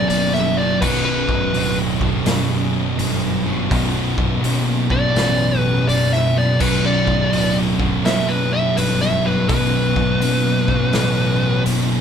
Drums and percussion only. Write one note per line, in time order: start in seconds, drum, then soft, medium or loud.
0.10 open hi-hat medium
0.34 snare soft
0.82 kick loud
0.82 crash loud
1.29 kick medium
1.54 open hi-hat medium
2.01 kick medium
2.26 snare loud
2.26 open hi-hat medium
2.99 open hi-hat medium
3.71 kick loud
3.71 open hi-hat medium
4.18 kick loud
4.44 open hi-hat medium
4.90 kick medium
5.16 snare loud
5.16 open hi-hat medium
5.89 open hi-hat medium
6.13 snare soft
6.60 kick loud
6.60 crash loud
7.07 kick loud
7.33 open hi-hat medium
7.80 kick medium
8.05 snare loud
8.05 open hi-hat medium
8.77 open hi-hat medium
9.02 snare soft
9.49 kick loud
9.49 open hi-hat medium
9.96 kick loud
10.21 open hi-hat medium
10.68 kick medium
10.93 snare loud
10.93 open hi-hat medium
11.66 open hi-hat medium